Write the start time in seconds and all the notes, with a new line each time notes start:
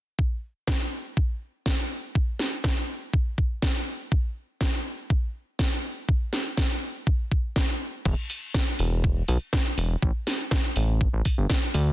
0.19 kick
0.68 kick, snare
1.17 kick
1.66 kick, snare
2.15 kick
2.39 snare
2.64 kick, snare
3.13 kick
3.38 kick
3.62 kick, snare
4.12 kick
4.61 kick, snare
5.10 kick
5.59 kick, snare
6.09 kick
6.33 snare
6.57 kick, snare
7.07 kick
7.32 kick
7.56 kick, snare
8.05 E1, kick, crash
8.30 open hi-hat
8.54 kick, snare
8.79 E1, open hi-hat
9.04 kick
9.28 B1, open hi-hat
9.53 kick, snare
9.78 E1, open hi-hat
10.02 A1, kick
10.27 snare, open hi-hat
10.51 kick, snare
10.76 A1, open hi-hat
11.01 kick
11.13 A1
11.25 kick, open hi-hat
11.38 G1
11.50 kick, snare
11.74 D2, open hi-hat